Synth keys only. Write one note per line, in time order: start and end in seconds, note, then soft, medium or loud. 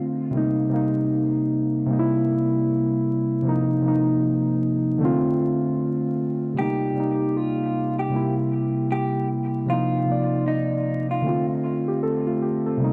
0.00 0.15 D3 medium
0.00 0.16 A3 medium
0.00 0.17 C4 medium
0.00 0.18 F4 medium
0.30 0.67 C3 medium
0.30 0.68 G3 medium
0.35 0.69 A#3 medium
0.35 0.70 D#4 medium
0.69 1.85 C3 medium
0.69 1.87 G3 medium
0.74 1.89 A#3 medium
0.74 1.91 D#4 medium
1.86 3.26 C3 medium
1.86 3.27 G3 medium
1.90 3.28 A#3 medium
1.90 1.99 D#4 medium
1.99 3.33 E4 loud
3.42 3.79 C3 medium
3.42 3.80 F3 medium
3.47 3.81 A#3 medium
3.47 3.82 D#4 medium
3.82 5.00 C3 medium
3.82 5.01 F3 medium
3.86 5.02 A#3 medium
3.86 5.03 D#4 medium
4.98 6.38 D3 medium
4.98 6.39 A3 medium
5.03 6.40 C4 medium
5.03 6.41 F4 loud
6.54 6.90 C3 medium
6.54 6.91 G3 medium
6.58 6.93 A#3 medium
6.58 6.94 D#4 medium
6.93 8.08 C3 medium
6.93 8.10 G3 medium
6.98 8.13 A#3 medium
6.98 8.15 D#4 medium
8.09 9.49 C3 medium
8.09 9.51 G3 medium
8.14 9.52 A#3 medium
8.14 9.53 E4 medium
9.66 10.02 C3 medium
9.66 10.03 F3 medium
9.70 10.04 A#3 medium
9.70 10.05 D#4 medium
10.05 11.23 C3 medium
10.05 11.24 F3 medium
10.09 11.25 A#3 medium
10.09 11.26 D5 medium
11.22 12.61 D3 medium
11.22 11.63 A3 medium
11.26 11.64 C4 medium
11.26 11.63 F4 medium
11.64 11.87 A3 medium
11.64 11.87 F4 medium
11.88 12.02 G4 medium
12.03 12.26 C4 medium
12.03 12.26 A4 medium
12.27 12.41 A3 medium
12.27 12.41 F4 medium
12.42 12.65 G4 medium
12.66 12.93 C4 medium
12.66 12.93 A4 medium
12.77 12.93 C3 medium
12.77 12.93 G3 medium
12.82 12.93 A#3 medium
12.82 12.93 D#4 medium